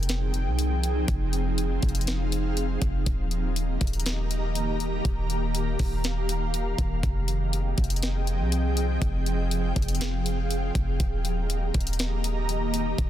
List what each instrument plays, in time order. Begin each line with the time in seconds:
Already playing: 808-style bass F1, ambient pad F3 C4 D#4 G#4 G5
0.03 closed hi-hat
0.09 snare, closed hi-hat
0.34 closed hi-hat
0.46 808-style bass C2
0.59 closed hi-hat
0.84 closed hi-hat
1.08 808-style bass F1, ambient pad F5, kick, closed hi-hat
1.33 closed hi-hat
1.58 closed hi-hat
1.82 808-style bass F1, kick, closed hi-hat
1.89 closed hi-hat
1.95 closed hi-hat
2.01 closed hi-hat
2.07 snare, closed hi-hat
2.32 closed hi-hat
2.57 closed hi-hat
2.82 808-style bass F1, kick, closed hi-hat
3.06 808-style bass D#1, ambient pad D#3 A#3 G4 D#5 A#5, kick, closed hi-hat
3.31 closed hi-hat
3.56 closed hi-hat
3.81 808-style bass D#1, kick, closed hi-hat
3.87 closed hi-hat
3.93 closed hi-hat
4.00 closed hi-hat
4.06 snare, closed hi-hat
4.31 closed hi-hat
4.55 closed hi-hat
4.80 closed hi-hat
5.05 808-style bass D#1, ambient pad F5, kick, closed hi-hat
5.30 closed hi-hat
5.55 closed hi-hat
5.79 808-style bass D#1, kick, open hi-hat
6.04 snare, closed hi-hat
6.29 closed hi-hat
6.54 closed hi-hat
6.78 808-style bass D#1, kick, closed hi-hat
7.03 808-style bass F1, ambient pad F3 C4 G#4 D#5 G5, kick, closed hi-hat
7.28 closed hi-hat
7.53 closed hi-hat
7.78 808-style bass F1, kick, closed hi-hat
7.84 closed hi-hat
7.90 closed hi-hat
7.96 closed hi-hat
8.03 snare, closed hi-hat
8.27 closed hi-hat
8.40 808-style bass C2
8.52 closed hi-hat
8.77 closed hi-hat
9.01 808-style bass F1, ambient pad F5, kick, closed hi-hat
9.26 closed hi-hat
9.51 closed hi-hat
9.76 808-style bass F1, kick, closed hi-hat
9.82 closed hi-hat
9.88 closed hi-hat
9.95 closed hi-hat
10.01 snare, closed hi-hat
10.26 closed hi-hat
10.51 closed hi-hat
10.75 808-style bass F1, kick, closed hi-hat
11.00 808-style bass D#1, ambient pad D#3 A#3 G4 D#5 A#5, kick, closed hi-hat
11.25 closed hi-hat
11.50 closed hi-hat
11.74 808-style bass D#1, kick, closed hi-hat
11.81 closed hi-hat
11.87 closed hi-hat
11.93 closed hi-hat
11.99 snare, closed hi-hat
12.24 closed hi-hat
12.49 closed hi-hat
12.74 closed hi-hat
12.98 808-style bass D#1, kick, closed hi-hat